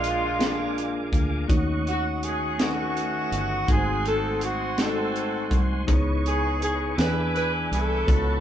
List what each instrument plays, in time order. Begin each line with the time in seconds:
Already playing: fingered electric bass A#1, tine electric piano A#2 A#3 D4 F4 G#4 D5, horn section G#3 D4 F4, alto saxophone F4, tonewheel organ A#4 F5 G#5 D6
0.04 closed hi-hat
0.39 tine electric piano A#3 D4 F4 G#4 F5, snare, closed hi-hat
0.78 closed hi-hat
1.12 fingered electric bass D2, kick, closed hi-hat
1.47 fingered electric bass D#2, tine electric piano D#3 A3 C#4 D#4 F#4 C#5, tonewheel organ F#4 D#5 F#5 C#6, kick, closed hi-hat
1.87 alto saxophone F#4, horn section F#4, closed hi-hat
2.23 alto saxophone G#4, closed hi-hat
2.28 horn section G#4
2.58 tine electric piano A3 C#4 D#4 F#4 B4, alto saxophone F#4, snare, closed hi-hat
2.62 horn section A3 C#4 F#4
2.97 closed hi-hat
3.32 fingered electric bass G1, closed hi-hat
3.67 fingered electric bass G#1, tine electric piano G#2 G#3 A3 D#4 F#4 A4, tonewheel organ G#5 C6, kick, closed hi-hat
3.71 horn section C4 D#4 G#4, alto saxophone G#4
3.76 tine electric piano C5
4.05 horn section A4, alto saxophone A4, closed hi-hat
4.41 horn section F#4, alto saxophone F#4, closed hi-hat
4.77 tine electric piano G#3 A3 D#4 F#4 D#5, horn section C4 A4, alto saxophone A4, snare, closed hi-hat
4.81 horn section F#4
5.16 closed hi-hat
5.51 fingered electric bass C2, kick, closed hi-hat
5.86 fingered electric bass C#2, tine electric piano C#3 B3 D#4 E4 G#4 C5, tonewheel organ B4 C#5 D#5 C#6, kick, closed hi-hat
5.94 tine electric piano C#5
6.26 horn section G#4, alto saxophone G#4, closed hi-hat
6.62 horn section G#4, alto saxophone G#4, closed hi-hat
6.95 fingered electric bass E2, tine electric piano E3 B3 D4 E4 G#4 C#5, horn section D4 B4 G#5, tonewheel organ B4 E5 G#5 D6, snare, closed hi-hat
7.01 alto saxophone B4, tine electric piano D5
7.34 horn section B4, alto saxophone B4, closed hi-hat
7.71 fingered electric bass C2, horn section E4 F#4 A4, alto saxophone A4, closed hi-hat
8.06 fingered electric bass C#2, tine electric piano C#3 B3 E4 F#4 A4 C#5, tonewheel organ F#5 A5 C#6, kick, closed hi-hat